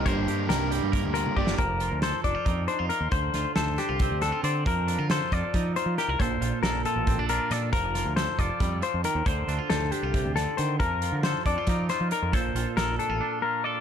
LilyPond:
<<
  \new Staff \with { instrumentName = "Clean electric guitar" } { \time 7/8 \key f \mixolydian \tempo 4 = 137 c''4 bes'8 r4 bes'8 d''8 | bes'4 c''8 d''4 c''8 bes'8 | c''4 a'8 g'4 a'8 c''8 | bes'4 c''8 d''4 c''8 bes'8 |
c''4 bes'8 a'4 bes'8 d''8 | bes'4 c''8 d''4 c''8 bes'8 | c''4 a'8 g'4 a'8 c''8 | bes'4 c''8 d''4 c''8 bes'8 |
c''4 bes'8 a'4 bes'8 d''8 | }
  \new Staff \with { instrumentName = "Clean electric guitar" } { \time 7/8 \key f \mixolydian << { bes'8 g'8 bes'8 g'8 bes'8 f'8 g'8 | bes'8 f'8 a'8 d'16 f'16 ees'8 d'16 f'16 bes'8 | c''8 f'8 c''8 d'16 f'16 c'8 d'16 f'16 d''8 | bes'8 d'16 f'16 a'8 f'8 ees'8 f'8 g'16 bes'16 |
a'8 f'8 a'8 f'8 c'16 d'16 f'8 a'8 | bes'8 f'8 a'8 f'2 | c''8 d'16 f'16 c''8 d'16 f'4.~ f'16 | bes'8 f'8 a'8 d'16 f'16 ees'8 f'8 bes'8 |
a'8 f'8 a'8 d'16 f'16 d'8 f'8 a'8 | } \\ { g,4 g4. d4 | f2.~ f8 | d2.~ d8 | f2.~ f8 |
bes,2.~ bes,8 | f2 g8 f8 ees8 | d2 c8 d8 ees8 | f2.~ f8 |
bes,2.~ bes,8 | } >> }
  \new Staff \with { instrumentName = "Overdriven electric guitar" } { \time 7/8 \key f \mixolydian <g, d g bes d' g'>4 <g, d g bes d' g'>8 <g bes d' g'>4. <g bes d' g'>8 | r2. r8 | r2. r8 | r2. r8 |
r2. r8 | r2. r8 | r2. r8 | r2. r8 |
r2. r8 | }
  \new Staff \with { instrumentName = "Fingered electric bass" } { \clef bass \time 7/8 \key f \mixolydian g,,8 g,8 c,8. g,8 d,8 r16 g,,8 | f,,8. d,8 r16 f,,16 r16 f,8 r16 f,16 r16 ees,16 | d,8 d,16 r16 d,8 r16 c,8 d,8 r16 d8 | f,8. d8 r16 f,16 r16 f8 r16 f16 r16 c,16 |
bes,,8 bes,,16 r16 bes,,8 r16 a,,8 bes,,8 r16 bes,8 | f,,8. d,8 r16 f,,16 r16 f,8 r16 f,16 r16 ees,16 | d,8 d,16 r16 d,8 r16 c,8 d,8 r16 d8 | f,8. d8 r16 f,16 r16 f8 r16 f16 r16 f,16 |
bes,,8 bes,,16 r16 bes,,8 r16 a,,16 r4. | }
  \new DrumStaff \with { instrumentName = "Drums" } \drummode { \time 7/8 <hh bd>8 hh8 <hh sn>8 hh8 <hh bd>8 hh16 tommh16 bd16 sn16 | <hh bd>8 hh8 <hh sn>8 <hh bd>8 <hh bd>8 hh8 hh8 | <hh bd>8 <hh sn>8 <hh sn>8 <hh sn>8 <hh bd>8 <hh sn>8 hh8 | <hh bd>8 hh8 <hh sn>8 <hh bd>8 <hh bd>8 hh8 <hh sn>8 |
<hh bd>8 hh8 <hh sn>8 hh8 <hh bd>8 hh8 <hh sn>8 | <hh bd>8 <hh sn>8 <hh sn>8 <hh bd>8 <hh bd>8 hh8 hh8 | <hh bd>8 hh8 <hh sn>8 hh8 <hh bd>8 <hh sn>8 hh8 | <hh bd>8 hh8 <hh sn>8 <hh bd>8 <hh bd sn>8 <hh sn>8 hh8 |
<hh bd>8 hh8 <hh sn>8 hh8 r4. | }
>>